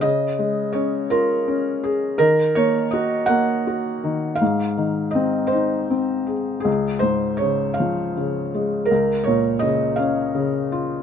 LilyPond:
<<
  \new Staff \with { instrumentName = "Felt piano" } { \time 6/8 \key des \major \tempo 4. = 54 ees''4 des''8 bes'4 r8 | bes'8 des''8 ees''8 ges''4. | f''4 ees''8 c''4 r8 | aes'8 c''8 des''8 f''4. |
bes'8 des''8 ees''8 f''4. | }
  \new Staff \with { instrumentName = "Felt piano" } { \clef bass \time 6/8 \key des \major des8 aes8 des'8 f'8 des'8 aes'8 | ees8 bes8 ges'8 bes8 ges'8 ees8 | aes,8 ees8 c'8 ees'8 c'8 aes'8 | des,8 aes,8 des8 f8 des8 aes8 |
des,8 bes,8 des8 des'8 des8 f'8 | }
>>